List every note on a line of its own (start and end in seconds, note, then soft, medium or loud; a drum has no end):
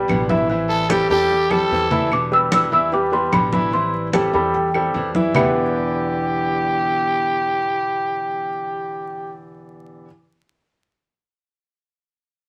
0.00 0.22 G3 medium
0.00 0.22 G4 medium
0.00 0.22 B4 medium
0.00 0.27 D5 loud
0.08 1.04 A1 medium
0.08 0.49 B2 medium
0.08 0.49 D3 medium
0.08 0.48 G3 medium
0.08 0.50 B3 medium
0.08 0.50 E4 medium
0.08 high conga medium
0.08 claves medium
0.29 0.46 E3 loud
0.29 0.46 E4 medium
0.29 0.46 E5 loud
0.29 1.67 E5 medium
0.29 high conga medium
0.49 0.89 E3 medium
0.49 0.83 E3 medium
0.49 0.89 G3 medium
0.49 0.90 C4 medium
0.49 0.83 E4 medium
0.49 0.90 E4 medium
0.49 0.83 E5 medium
0.49 high conga soft
0.69 0.91 A4 loud
0.69 high conga soft
0.90 1.09 E3 medium
0.90 1.09 G3 medium
0.90 1.07 G3 medium
0.90 1.10 C4 medium
0.90 1.08 E4 medium
0.90 1.10 G4 loud
0.90 1.07 G4 medium
0.90 1.07 A4 medium
0.90 high conga loud
0.90 claves medium
1.10 1.67 E2 medium
1.10 1.44 G3 medium
1.10 1.29 G3 soft
1.10 1.30 C4 soft
1.10 1.29 E4 soft
1.10 1.52 G4 loud
1.10 1.44 G4 medium
1.10 1.44 A4 medium
1.10 high conga soft
1.30 muted nylon-string guitar stroke medium
1.30 high conga soft
1.50 1.84 G3 medium
1.50 1.70 G3 soft
1.50 1.70 C4 soft
1.50 1.70 E4 soft
1.50 1.84 G4 medium
1.50 2.11 A4 loud
1.50 1.84 A4 medium
1.50 high conga medium
1.50 claves medium
1.71 2.66 E2 medium
1.71 2.10 E3 medium
1.71 2.10 G3 medium
1.71 2.11 C4 medium
1.71 2.11 E4 medium
1.91 2.08 E3 loud
1.91 2.08 E4 medium
1.91 2.08 E5 loud
1.91 low conga medium
2.11 2.50 B2 medium
2.11 2.50 D3 medium
2.11 2.51 G3 medium
2.11 2.51 B3 medium
2.11 2.52 E4 medium
2.11 2.33 D6 loud
2.11 high conga soft
2.11 claves medium
2.32 2.65 G3 medium
2.32 2.65 G4 medium
2.32 2.65 B4 medium
2.32 2.53 E6 loud
2.32 high conga soft
2.51 2.71 B2 medium
2.51 2.71 D3 medium
2.51 2.71 G3 medium
2.51 2.71 B3 medium
2.51 2.70 E4 medium
2.51 2.72 E6 loud
2.51 high conga loud
2.51 claves medium
2.71 3.29 E2 medium
2.71 2.89 E3 medium
2.71 2.91 G3 soft
2.71 2.91 B3 soft
2.71 2.91 E4 medium
2.71 2.89 E4 medium
2.71 2.89 E5 medium
2.71 2.93 E6 loud
2.71 high conga soft
2.92 3.09 G3 medium
2.92 3.09 G4 medium
2.92 3.09 B4 medium
2.92 3.12 D6 loud
2.92 muted nylon-string guitar stroke medium
2.92 high conga soft
3.11 3.46 G3 medium
3.11 3.32 G3 soft
3.11 3.32 B3 soft
3.11 3.31 E4 soft
3.11 3.46 G4 medium
3.11 3.46 B4 medium
3.11 3.34 C6 medium
3.11 high conga soft
3.32 4.28 A1 medium
3.32 3.72 B2 medium
3.32 3.72 D3 medium
3.32 3.72 G3 medium
3.32 3.73 B3 medium
3.32 3.73 E4 medium
3.32 3.52 B5 loud
3.32 high conga medium
3.32 claves medium
3.53 3.69 E3 loud
3.53 3.70 E4 loud
3.53 3.70 E5 loud
3.53 3.74 B5 medium
3.53 high conga medium
3.72 4.11 E3 medium
3.72 4.07 E3 medium
3.72 4.12 G3 medium
3.72 4.13 C4 medium
3.72 4.07 E4 medium
3.72 4.13 E4 medium
3.72 4.07 E5 medium
3.72 4.30 C6 loud
3.72 high conga soft
3.94 high conga soft
4.12 4.32 E3 medium
4.12 4.33 G3 medium
4.12 4.30 G3 medium
4.12 4.33 C4 medium
4.12 4.32 E4 medium
4.12 4.30 G4 medium
4.12 4.31 A4 medium
4.12 high conga loud
4.12 claves medium
4.33 4.90 E2 medium
4.33 4.67 G3 medium
4.33 4.53 G3 soft
4.33 4.53 C4 soft
4.33 4.53 E4 soft
4.33 4.67 G4 medium
4.33 4.67 A4 medium
4.33 4.53 B5 medium
4.33 high conga soft
4.53 5.11 G5 medium
4.53 muted nylon-string guitar stroke medium
4.53 high conga soft
4.74 5.08 G3 medium
4.74 4.94 G3 soft
4.74 4.94 C4 soft
4.74 4.94 E4 medium
4.74 5.08 G4 medium
4.74 5.08 A4 medium
4.74 high conga soft
4.74 claves medium
4.94 5.30 E2 loud
4.94 5.34 E3 medium
4.94 5.34 G3 medium
4.94 5.35 C4 medium
4.94 5.35 E4 medium
4.94 high conga soft
5.15 5.31 E3 loud
5.15 5.32 E4 medium
5.15 5.32 E5 loud
5.15 high conga medium
5.34 10.08 E2 medium
5.34 10.05 E2 loud
5.34 10.09 B2 medium
5.34 10.09 D3 medium
5.34 10.05 E3 medium
5.34 10.10 G3 medium
5.34 10.05 B3 medium
5.34 10.10 B3 medium
5.34 10.05 D4 medium
5.34 10.05 E4 medium
5.34 10.10 E4 medium
5.34 9.35 G4 medium
5.34 10.05 G4 medium
5.34 10.05 B4 medium
5.34 10.05 E5 medium
5.34 low conga loud
5.34 claves loud